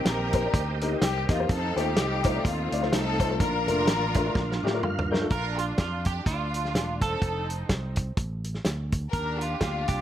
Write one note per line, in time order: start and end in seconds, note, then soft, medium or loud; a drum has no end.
0.00 0.29 D#3 medium
0.00 1.45 A#3 medium
0.00 0.49 C4 medium
0.00 1.45 C4 medium
0.00 1.45 D#4 medium
0.00 1.45 G4 medium
0.05 0.46 A#1 loud
0.05 0.98 G4 medium
0.05 0.54 A#4 medium
0.05 snare loud
0.05 closed hi-hat medium
0.33 0.39 A#3 medium
0.33 0.40 D#4 medium
0.33 0.40 G4 medium
0.33 0.40 C5 medium
0.33 kick medium
0.33 closed hi-hat medium
0.45 0.57 A#3 medium
0.45 0.57 D#4 medium
0.45 0.57 G4 medium
0.45 0.57 D5 medium
0.54 0.94 D2 loud
0.54 kick loud
0.54 closed hi-hat medium
0.81 0.88 A#3 medium
0.81 0.88 D#4 medium
0.81 0.88 G4 medium
0.81 0.88 A#4 medium
0.81 closed hi-hat medium
0.91 1.04 A#3 medium
0.91 1.04 D#4 medium
0.91 1.04 G4 medium
0.91 1.04 D#5 medium
1.01 1.25 C2 loud
1.01 1.27 G4 medium
1.01 snare loud
1.01 closed hi-hat loud
1.29 1.46 E2 medium
1.29 1.35 A#3 medium
1.29 1.35 D#4 medium
1.29 1.49 F4 medium
1.29 1.35 G4 medium
1.29 1.35 D#5 medium
1.29 kick medium
1.29 snare soft
1.29 closed hi-hat medium
1.39 1.49 A#3 medium
1.39 1.49 D#4 medium
1.39 1.49 G4 medium
1.39 1.50 C5 medium
1.47 1.73 F2 loud
1.47 3.35 D#3 medium
1.47 3.35 A3 medium
1.47 3.35 C4 medium
1.47 1.78 D#4 medium
1.47 3.35 F4 medium
1.47 kick loud
1.47 closed hi-hat medium
1.52 1.78 C4 medium
1.52 1.78 A4 loud
1.76 1.94 D#2 medium
1.76 1.88 A3 medium
1.76 2.45 C4 medium
1.76 1.88 D#4 medium
1.76 2.69 D#4 medium
1.76 1.89 F4 medium
1.76 2.46 G4 loud
1.76 1.89 C5 medium
1.76 closed hi-hat medium
1.96 2.37 C2 loud
1.96 snare loud
1.96 closed hi-hat medium
2.24 2.30 A3 medium
2.24 2.30 D#4 medium
2.24 2.30 F4 medium
2.24 2.31 C5 medium
2.24 kick medium
2.24 closed hi-hat medium
2.35 2.47 A3 medium
2.35 2.47 D#4 medium
2.35 2.48 F4 medium
2.35 2.48 D5 medium
2.45 2.68 D#2 medium
2.45 3.36 A3 medium
2.45 2.93 C4 medium
2.45 2.93 F4 medium
2.45 kick loud
2.45 closed hi-hat medium
2.72 2.89 D2 medium
2.72 2.78 A3 medium
2.72 2.78 D#4 medium
2.72 2.78 F4 medium
2.72 2.79 D5 medium
2.72 closed hi-hat medium
2.82 2.95 A3 medium
2.82 2.95 D#4 medium
2.82 2.95 F4 medium
2.82 2.95 C5 medium
2.82 snare soft
2.93 3.40 C2 loud
2.93 3.37 C4 medium
2.93 3.37 D#4 medium
2.93 3.41 A4 loud
2.93 snare loud
2.93 closed hi-hat medium
3.19 3.25 A3 medium
3.19 3.25 D#4 medium
3.19 3.26 F4 medium
3.19 3.26 C5 medium
3.19 kick medium
3.19 closed hi-hat medium
3.30 3.40 A3 medium
3.30 3.40 D#4 medium
3.30 3.40 F4 medium
3.30 3.40 C5 medium
3.40 3.69 A#1 loud
3.40 4.11 A#2 medium
3.40 5.27 D3 medium
3.40 5.27 F3 medium
3.40 5.27 A#3 medium
3.40 4.80 D4 medium
3.40 5.27 F4 medium
3.40 4.80 F4 medium
3.40 4.80 A#4 loud
3.40 kick loud
3.40 closed hi-hat medium
3.67 3.85 F1 medium
3.67 3.79 A3 medium
3.67 3.79 D4 medium
3.67 3.80 F4 medium
3.67 3.80 A#4 medium
3.67 closed hi-hat medium
3.87 4.28 A1 medium
3.87 snare loud
3.87 closed hi-hat medium
4.14 4.21 A3 medium
4.14 4.21 D4 medium
4.14 4.21 F4 medium
4.14 4.21 A#4 loud
4.14 kick medium
4.14 closed hi-hat medium
4.26 4.38 A3 medium
4.26 4.38 D4 medium
4.26 4.38 F4 medium
4.26 4.39 A#4 medium
4.35 4.58 A#1 medium
4.35 kick loud
4.35 snare medium
4.52 snare medium
4.63 4.83 A2 medium
4.63 4.69 A3 medium
4.63 4.69 D4 medium
4.63 4.70 F4 medium
4.63 4.70 G4 loud
4.63 4.82 D5 medium
4.67 snare medium
4.74 4.86 A3 medium
4.74 4.86 D4 medium
4.74 4.86 F4 medium
4.74 4.87 A#4 medium
4.83 5.24 G2 loud
4.83 5.09 F5 medium
4.83 mid tom medium
4.99 floor tom loud
5.11 5.17 A3 medium
5.11 5.17 D4 medium
5.11 5.17 F4 medium
5.11 5.17 A#4 loud
5.11 5.30 G5 medium
5.11 snare medium
5.20 5.31 A3 medium
5.20 5.31 D4 medium
5.20 5.31 F4 medium
5.20 5.31 A4 medium
5.30 5.71 A#1 medium
5.30 6.23 D4 medium
5.30 5.57 F4 medium
5.30 5.59 A#4 loud
5.30 5.57 A#4 medium
5.30 kick loud
5.30 closed hi-hat medium
5.59 5.79 F4 medium
5.59 5.65 F4 medium
5.59 closed hi-hat medium
5.78 6.19 F2 medium
5.78 6.05 F4 medium
5.78 6.06 F4 medium
5.78 kick medium
5.78 snare loud
5.78 closed hi-hat medium
6.05 6.25 G4 medium
6.05 6.12 G4 medium
6.05 kick medium
6.05 closed hi-hat medium
6.26 6.76 D2 medium
6.26 7.18 A3 medium
6.26 7.18 D4 medium
6.26 7.02 F4 medium
6.26 6.98 F4 medium
6.26 kick loud
6.26 closed hi-hat medium
6.54 closed hi-hat medium
6.65 snare soft
6.74 7.15 E1 medium
6.74 snare loud
6.74 closed hi-hat medium
7.01 7.93 C4 medium
7.01 7.93 D#4 medium
7.01 7.46 A4 medium
7.01 kick medium
7.01 closed hi-hat medium
7.22 7.63 F1 loud
7.22 kick loud
7.22 closed hi-hat medium
7.50 closed hi-hat medium
7.69 8.10 C2 medium
7.69 kick medium
7.69 snare loud
7.69 closed hi-hat medium
7.96 kick medium
7.96 closed hi-hat medium
8.17 8.58 A1 medium
8.17 kick loud
8.17 closed hi-hat medium
8.44 closed hi-hat medium
8.54 snare soft
8.65 9.06 D2 medium
8.65 snare loud
8.65 closed hi-hat medium
8.92 kick medium
8.92 closed hi-hat medium
9.12 9.54 D#2 medium
9.12 9.59 D4 medium
9.12 10.01 G4 medium
9.12 9.38 A#4 medium
9.12 9.42 A#4 medium
9.12 kick medium
9.12 closed hi-hat medium
9.40 9.59 F4 medium
9.40 9.60 F4 medium
9.40 closed hi-hat medium
9.60 9.84 D2 medium
9.60 10.01 A#3 medium
9.60 10.01 D4 medium
9.60 10.01 F4 medium
9.60 9.87 F4 medium
9.60 kick medium
9.60 snare loud
9.60 closed hi-hat medium
9.88 10.01 C2 medium
9.88 10.01 G4 medium
9.88 kick medium
9.88 closed hi-hat medium